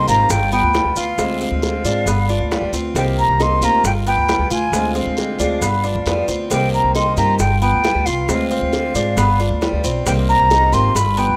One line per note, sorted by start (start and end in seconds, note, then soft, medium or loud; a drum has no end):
0.07 0.29 G#1 medium
0.07 0.30 D#3 medium
0.07 0.29 A#3 medium
0.07 0.29 C4 medium
0.07 0.51 F4 medium
0.07 0.29 G4 medium
0.07 0.32 A#5 loud
0.07 short guiro medium
0.07 maracas medium
0.29 0.61 G1 loud
0.29 0.52 G5 medium
0.29 muted steel-string acoustic guitar stroke medium
0.29 high bongo medium
0.29 long guiro medium
0.29 maracas medium
0.51 0.95 B3 medium
0.51 0.73 B3 soft
0.51 0.73 F4 medium
0.51 0.94 G5 loud
0.51 maracas soft
0.63 0.84 D2 medium
0.73 0.95 G3 medium
0.73 0.95 B3 medium
0.73 0.95 F4 medium
0.73 high bongo medium
0.73 low bongo medium
0.73 short guiro medium
0.73 maracas soft
0.85 0.96 D2 medium
0.96 1.17 D2 medium
0.96 1.19 B3 soft
0.96 1.18 F4 medium
0.96 1.39 F4 medium
0.96 1.38 F5 medium
0.96 short guiro medium
0.96 maracas medium
1.18 1.50 D2 loud
1.18 1.61 D3 medium
1.18 1.62 G#3 medium
1.18 1.62 C4 medium
1.18 1.63 F4 medium
1.18 high bongo medium
1.18 long guiro medium
1.18 maracas medium
1.41 1.84 C4 medium
1.41 2.70 F5 medium
1.41 high bongo soft
1.41 maracas soft
1.51 1.83 D2 medium
1.62 1.84 D3 medium
1.62 1.84 G#3 medium
1.62 1.84 C4 medium
1.62 1.83 F4 medium
1.62 high bongo medium
1.62 short guiro medium
1.62 maracas soft
1.84 2.05 G#2 loud
1.84 2.07 G#3 medium
1.84 2.07 C4 medium
1.84 2.06 D4 medium
1.84 2.06 F4 medium
1.84 high bongo soft
1.84 short guiro medium
1.84 maracas medium
2.06 2.38 G1 loud
2.06 2.28 B3 medium
2.06 muted steel-string acoustic guitar stroke medium
2.06 high bongo medium
2.06 long guiro medium
2.06 maracas medium
2.29 2.51 B3 soft
2.29 2.72 D4 medium
2.29 2.51 F4 medium
2.29 high bongo soft
2.29 maracas soft
2.40 2.61 D2 medium
2.51 2.73 G3 medium
2.51 2.73 B3 medium
2.51 2.72 F4 medium
2.51 high bongo medium
2.51 low bongo medium
2.51 short guiro medium
2.51 maracas soft
2.62 2.72 D2 medium
2.72 2.94 D2 medium
2.72 2.96 B3 soft
2.72 2.94 C4 medium
2.72 2.95 F4 medium
2.72 short guiro medium
2.72 maracas medium
2.95 3.27 C2 loud
2.95 3.39 C3 medium
2.95 3.39 D#3 medium
2.95 3.39 A#3 medium
2.95 3.39 C4 medium
2.95 3.40 C4 medium
2.95 3.40 G4 medium
2.95 3.03 G5 medium
2.95 high bongo medium
2.95 long guiro medium
2.95 maracas medium
3.18 3.44 A#5 loud
3.18 maracas soft
3.28 3.60 C2 medium
3.40 3.61 D#3 medium
3.40 3.62 A#3 medium
3.40 3.62 C4 medium
3.40 3.61 D#4 medium
3.40 3.61 G4 medium
3.40 3.66 C6 loud
3.40 high bongo medium
3.40 short guiro medium
3.40 maracas soft
3.61 3.83 D2 loud
3.61 3.84 D#3 medium
3.61 3.84 A#3 medium
3.61 3.84 C4 medium
3.61 4.05 F4 medium
3.61 3.83 G4 medium
3.61 3.85 A#5 loud
3.61 short guiro medium
3.61 maracas medium
3.84 4.16 G1 loud
3.84 3.92 G5 loud
3.84 muted steel-string acoustic guitar stroke medium
3.84 high bongo medium
3.84 long guiro medium
3.84 maracas medium
4.07 4.50 B3 medium
4.07 4.29 B3 soft
4.07 4.28 F4 medium
4.07 4.48 G5 loud
4.07 maracas soft
4.17 4.38 D2 medium
4.29 4.50 G3 medium
4.29 4.50 B3 medium
4.29 4.50 F4 medium
4.29 high bongo medium
4.29 low bongo medium
4.29 short guiro medium
4.29 maracas soft
4.39 4.49 D2 medium
4.50 4.71 D2 medium
4.50 4.73 B3 soft
4.50 4.94 F4 medium
4.50 4.72 F4 medium
4.50 4.93 G#5 medium
4.50 short guiro medium
4.50 maracas medium
4.72 5.04 D2 loud
4.72 5.17 D3 medium
4.72 5.17 G#3 medium
4.72 5.18 C4 medium
4.72 5.18 F4 medium
4.72 high bongo medium
4.72 long guiro medium
4.72 maracas medium
4.95 5.38 C4 medium
4.95 6.25 F5 medium
4.95 high bongo soft
4.95 maracas soft
5.06 5.38 D2 medium
5.17 5.39 D3 soft
5.17 5.39 G#3 medium
5.17 5.39 C4 medium
5.17 5.38 F4 medium
5.17 high bongo medium
5.17 short guiro medium
5.17 maracas soft
5.39 5.61 D2 loud
5.39 5.61 G#3 medium
5.39 5.61 C4 medium
5.39 5.61 D4 medium
5.39 5.61 F4 medium
5.39 high bongo soft
5.39 short guiro medium
5.39 maracas medium
5.61 5.93 G1 loud
5.61 5.83 B3 medium
5.61 muted steel-string acoustic guitar stroke medium
5.61 high bongo medium
5.61 long guiro medium
5.61 maracas medium
5.84 6.06 B3 soft
5.84 6.27 D4 medium
5.84 6.05 F4 medium
5.84 high bongo soft
5.84 maracas soft
5.95 6.05 D2 medium
6.06 6.26 F2 medium
6.06 6.27 G3 medium
6.06 6.28 B3 medium
6.06 6.27 F4 medium
6.06 high bongo medium
6.06 low bongo medium
6.06 short guiro medium
6.06 maracas soft
6.28 6.48 D2 medium
6.28 6.49 C4 medium
6.28 6.50 F4 medium
6.28 short guiro medium
6.28 maracas medium
6.50 6.82 C2 loud
6.50 6.94 C3 medium
6.50 6.94 D#3 medium
6.50 6.95 A#3 medium
6.50 6.94 C4 medium
6.50 6.95 C4 medium
6.50 6.95 G4 medium
6.50 6.72 G5 medium
6.50 high bongo medium
6.50 long guiro medium
6.50 maracas medium
6.73 6.94 A#5 loud
6.73 maracas soft
6.83 7.15 C2 medium
6.95 7.16 D#3 medium
6.95 7.17 A#3 medium
6.95 7.17 C4 medium
6.95 7.17 D#4 medium
6.95 7.16 G4 medium
6.95 7.16 C6 loud
6.95 high bongo medium
6.95 short guiro medium
6.95 maracas soft
7.17 7.38 G2 loud
7.17 7.40 D#3 medium
7.17 7.39 A#3 medium
7.17 7.39 C4 medium
7.17 7.60 F4 medium
7.17 7.39 G4 medium
7.17 7.38 A#5 loud
7.17 short guiro medium
7.17 maracas medium
7.39 7.71 G1 loud
7.39 7.60 G5 loud
7.39 muted steel-string acoustic guitar stroke medium
7.39 high bongo medium
7.39 long guiro medium
7.39 maracas loud
7.61 8.05 B3 medium
7.61 7.84 B3 soft
7.61 7.83 F4 soft
7.61 8.07 G5 loud
7.61 maracas soft
7.73 7.94 D2 medium
7.84 8.06 G3 medium
7.84 8.06 B3 medium
7.84 8.05 F4 medium
7.84 high bongo medium
7.84 low bongo medium
7.84 short guiro medium
7.84 maracas soft
7.95 8.06 D2 medium
8.05 8.27 C2 medium
8.05 8.28 B3 soft
8.05 8.28 F4 medium
8.05 8.50 F4 medium
8.05 8.50 F5 medium
8.05 short guiro medium
8.05 maracas medium
8.28 8.60 D2 loud
8.28 8.72 D3 medium
8.28 8.72 G#3 medium
8.28 8.73 C4 medium
8.28 8.73 F4 medium
8.28 high bongo medium
8.28 long guiro medium
8.28 maracas medium
8.50 8.94 C4 medium
8.50 9.80 F5 medium
8.50 high bongo soft
8.50 maracas soft
8.62 8.93 D2 medium
8.73 8.94 D3 medium
8.73 8.95 G#3 soft
8.73 8.95 C4 medium
8.73 8.94 F4 medium
8.73 high bongo medium
8.73 short guiro medium
8.73 maracas soft
8.95 9.16 G#2 loud
8.95 9.17 G#3 medium
8.95 9.17 C4 medium
8.95 9.17 D4 medium
8.95 9.16 F4 medium
8.95 high bongo soft
8.95 short guiro medium
8.95 maracas medium
9.17 9.49 G1 loud
9.17 9.39 B3 medium
9.17 muted steel-string acoustic guitar stroke medium
9.17 high bongo medium
9.17 long guiro medium
9.17 maracas medium
9.40 9.61 B3 soft
9.40 9.83 D4 medium
9.40 9.61 F4 soft
9.40 high bongo soft
9.40 maracas soft
9.50 9.71 D2 loud
9.61 9.83 G3 medium
9.61 9.83 B3 medium
9.61 9.83 F4 medium
9.61 high bongo medium
9.61 low bongo medium
9.61 short guiro medium
9.61 maracas soft
9.73 9.83 D2 medium
9.84 10.05 B1 medium
9.84 10.06 B3 soft
9.84 10.05 C4 medium
9.84 10.05 F4 medium
9.84 short guiro medium
9.84 maracas medium
10.06 10.38 C2 loud
10.06 10.49 C3 medium
10.06 10.49 D#3 medium
10.06 10.50 A#3 medium
10.06 10.49 C4 medium
10.06 10.50 C4 medium
10.06 10.50 G4 medium
10.06 10.13 G5 loud
10.06 high bongo medium
10.06 long guiro medium
10.06 maracas medium
10.29 10.74 A#5 loud
10.29 maracas soft
10.39 10.71 C2 medium
10.50 10.72 D#3 medium
10.50 10.72 A#3 soft
10.50 10.72 C4 medium
10.50 10.72 D#4 medium
10.50 10.71 G4 medium
10.50 high bongo medium
10.50 short guiro medium
10.50 maracas soft
10.72 10.94 G#1 loud
10.72 10.95 D#3 medium
10.72 10.95 A#3 medium
10.72 10.94 C4 medium
10.72 11.16 F4 medium
10.72 10.94 G4 medium
10.72 10.97 C6 loud
10.72 short guiro medium
10.72 maracas medium
10.95 11.27 G1 loud
10.95 11.20 B5 loud
10.95 muted steel-string acoustic guitar stroke medium
10.95 high bongo medium
10.95 long guiro medium
10.95 maracas medium
11.17 11.37 B3 medium
11.17 11.37 B3 soft
11.17 11.37 F4 soft
11.17 11.37 G5 loud
11.17 maracas soft
11.28 11.37 D2 medium